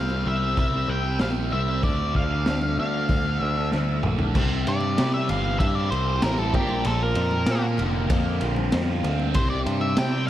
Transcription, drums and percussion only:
0.10 high conga
0.26 low conga
0.57 kick, open hi-hat, high conga
1.19 snare, open hi-hat
1.35 high conga
1.51 low conga
1.83 kick, open hi-hat
2.15 kick
2.46 snare, open hi-hat
2.61 high conga
2.77 low conga
3.09 kick, open hi-hat, high conga
3.72 snare, high conga
3.88 high conga
4.03 mid tom, low conga
4.18 floor tom, low conga
4.35 kick, crash
4.67 ride
4.81 high conga
4.98 snare, ride
5.28 ride, low conga
5.60 kick, ride
5.92 ride
6.22 snare, ride
6.38 high conga
6.53 kick, ride, low conga
6.69 high conga
6.85 ride
7.15 ride
7.31 high conga
7.46 snare, ride
7.78 ride, low conga
8.10 kick, ride
8.41 ride
8.56 high conga
8.72 snare, ride
8.88 high conga
9.03 ride, low conga
9.19 high conga
9.34 kick, ride
9.66 ride
9.81 high conga
9.97 snare, ride

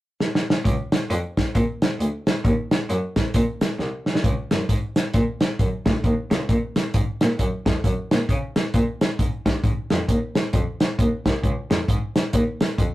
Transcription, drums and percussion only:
0.20 snare
0.35 snare
0.50 snare
0.65 kick, closed hi-hat
0.92 snare, closed hi-hat
1.10 closed hi-hat
1.37 kick, snare, closed hi-hat
1.55 kick, closed hi-hat
1.82 snare, closed hi-hat
2.00 closed hi-hat
2.27 snare, closed hi-hat
2.45 kick, closed hi-hat
2.71 snare, closed hi-hat
2.90 closed hi-hat
3.16 kick, snare, closed hi-hat
3.34 kick, closed hi-hat
3.61 snare, closed hi-hat
3.79 snare
4.06 snare
4.15 snare
4.24 kick, closed hi-hat
4.51 snare, closed hi-hat
4.69 kick, closed hi-hat
4.96 snare, closed hi-hat
5.14 kick, closed hi-hat
5.41 snare, closed hi-hat
5.59 kick, closed hi-hat
5.86 kick, snare, closed hi-hat
6.04 kick, closed hi-hat
6.31 snare, closed hi-hat
6.49 kick, closed hi-hat
6.76 snare, closed hi-hat
6.94 kick, closed hi-hat
7.21 snare, closed hi-hat
7.39 kick, closed hi-hat
7.66 kick, snare, closed hi-hat
7.84 kick, closed hi-hat
8.11 snare, closed hi-hat
8.29 kick, closed hi-hat
8.56 snare, closed hi-hat
8.74 kick, closed hi-hat
9.01 snare, closed hi-hat
9.19 kick, closed hi-hat
9.46 kick, snare, closed hi-hat
9.64 kick, closed hi-hat
9.90 snare, closed hi-hat
10.09 kick, closed hi-hat
10.35 snare, closed hi-hat
10.53 kick, closed hi-hat
10.80 snare, closed hi-hat
10.99 kick, closed hi-hat
11.26 kick, snare, closed hi-hat
11.44 kick, closed hi-hat
11.71 snare, closed hi-hat
11.88 kick, closed hi-hat
12.16 snare, closed hi-hat
12.33 kick, closed hi-hat
12.61 snare, closed hi-hat
12.78 kick, closed hi-hat

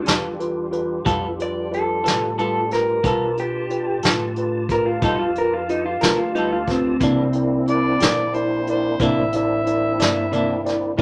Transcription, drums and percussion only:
0.06 snare, closed hi-hat
0.40 closed hi-hat
0.73 closed hi-hat
1.06 kick, closed hi-hat
1.40 closed hi-hat
1.73 closed hi-hat
2.05 snare, closed hi-hat
2.39 closed hi-hat
2.71 snare, closed hi-hat
3.04 kick, closed hi-hat
3.37 closed hi-hat
3.70 closed hi-hat
4.03 snare, closed hi-hat
4.36 closed hi-hat
4.69 kick, closed hi-hat
5.02 kick, closed hi-hat
5.35 closed hi-hat
5.69 closed hi-hat
6.01 snare, closed hi-hat
6.35 closed hi-hat
6.67 kick, snare, closed hi-hat
7.00 kick, closed hi-hat
7.33 closed hi-hat
7.67 closed hi-hat
8.00 snare, closed hi-hat
8.34 closed hi-hat
8.67 closed hi-hat
9.00 kick, closed hi-hat
9.32 closed hi-hat
9.66 closed hi-hat
9.99 snare, closed hi-hat
10.33 closed hi-hat
10.66 snare, closed hi-hat
10.99 kick

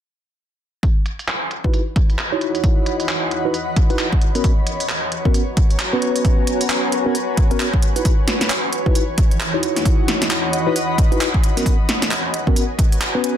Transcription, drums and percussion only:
0.83 kick, closed hi-hat
1.06 closed hi-hat
1.19 closed hi-hat
1.28 clap, closed hi-hat
1.51 closed hi-hat
1.64 kick
1.74 closed hi-hat
1.96 kick, closed hi-hat
2.10 closed hi-hat
2.19 clap, closed hi-hat
2.41 closed hi-hat
2.55 closed hi-hat
2.64 kick, closed hi-hat
2.86 closed hi-hat
3.00 closed hi-hat
3.09 clap, closed hi-hat
3.31 closed hi-hat
3.54 closed hi-hat
3.76 kick, closed hi-hat
3.90 closed hi-hat
3.99 clap, closed hi-hat
4.13 kick
4.21 closed hi-hat
4.35 closed hi-hat
4.44 kick, closed hi-hat
4.67 closed hi-hat
4.80 closed hi-hat
4.89 clap, closed hi-hat
5.12 closed hi-hat
5.25 kick
5.34 closed hi-hat
5.57 kick, closed hi-hat
5.70 closed hi-hat
5.80 clap, closed hi-hat
6.02 closed hi-hat
6.16 closed hi-hat
6.25 kick, closed hi-hat
6.47 closed hi-hat
6.61 closed hi-hat
6.70 clap, closed hi-hat
6.92 closed hi-hat
7.15 closed hi-hat
7.37 kick, closed hi-hat
7.51 closed hi-hat
7.60 clap, closed hi-hat
7.74 kick
7.82 closed hi-hat
7.96 closed hi-hat
8.05 kick, closed hi-hat
8.28 snare, closed hi-hat
8.41 snare, closed hi-hat
8.50 clap, closed hi-hat
8.73 closed hi-hat
8.86 kick
8.95 closed hi-hat
9.18 kick, closed hi-hat
9.31 closed hi-hat
9.40 clap, closed hi-hat
9.63 closed hi-hat
9.76 snare, closed hi-hat
9.85 kick, closed hi-hat
10.08 snare, closed hi-hat
10.22 snare, closed hi-hat
10.31 clap, closed hi-hat
10.53 closed hi-hat
10.76 closed hi-hat
10.98 kick, closed hi-hat
11.12 closed hi-hat
11.21 clap, closed hi-hat
11.34 kick
11.44 closed hi-hat
11.57 snare, closed hi-hat
11.66 kick, closed hi-hat
11.89 snare, closed hi-hat
12.02 snare, closed hi-hat
12.11 clap, closed hi-hat
12.34 closed hi-hat
12.47 kick
12.56 closed hi-hat
12.79 kick, closed hi-hat
12.92 closed hi-hat
13.01 clap, closed hi-hat
13.24 closed hi-hat

